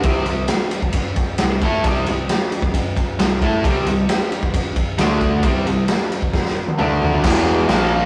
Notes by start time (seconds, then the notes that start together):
0.03 C2 C3 G3 C4, kick, ride
0.25 C2 C3 G3, ride
0.48 snare, ride
0.71 ride
0.82 kick
0.93 kick, ride
1.16 kick, ride
1.38 C2 C3 G3, snare, ride
1.61 A2 A3 E4 A4, kick, ride
1.84 C2 C3 G3 C4, kick, ride
2.06 C2 C3 G3, ride
2.29 snare, ride
2.52 ride
2.62 kick
2.74 kick, ride
2.97 kick, ride
3.19 C2 C3 G3, snare, ride
3.41 A2 A3 E4 A4, kick, ride
3.63 C2 C3 G3 C4, kick, ride
3.85 C2 C3 G3, ride
4.09 snare, ride
4.32 ride
4.43 kick
4.54 kick, ride
4.76 kick, ride
4.98 D2 D3 A3 D4, snare, ride
5.21 kick, ride
5.43 C2 C3 G3 C4, kick, ride
5.65 C2 C3 G3, ride
5.88 snare, ride
6.12 ride
6.22 kick
6.33 kick, snare
6.46 snare
6.68 high tom
6.78 D2 D3 A3 D4, mid tom
7.02 floor tom
7.13 floor tom
7.23 E1 E2 B2 E3, kick, snare, crash
7.68 A#1 A#2 F3 A#3, snare, crash